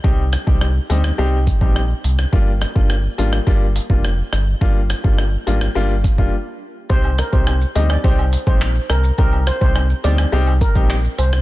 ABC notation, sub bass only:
X:1
M:4/4
L:1/16
Q:1/4=105
K:Cm
V:1 name="Sub bass" clef=bass
C,,3 C,,3 D,,2 C,,3 B,,,3 C,,2 | G,,,3 G,,,3 A,,,2 G,,,3 F,,,3 G,,,2 | G,,,3 G,,,3 A,,,2 G,,,3 F,,, z4 | C,,3 C,,3 D,,2 C,,3 B,,,3 C,,2 |
C,,3 C,,3 D,,2 C,,3 B,,,3 C,,2 |]